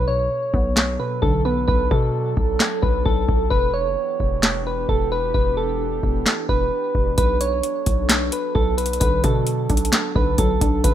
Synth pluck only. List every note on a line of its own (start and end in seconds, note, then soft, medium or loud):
0.08 0.98 B2 medium
0.54 1.44 B3 medium
1.00 1.68 B2 medium
1.22 1.68 D3 medium
1.45 1.68 B3 medium
9.01 9.23 D3 medium
9.24 10.14 D3 medium
9.70 10.60 D4 medium
10.15 10.84 D3 medium
10.39 10.84 F#3 medium
10.61 10.84 D4 medium
10.85 10.94 C#3 medium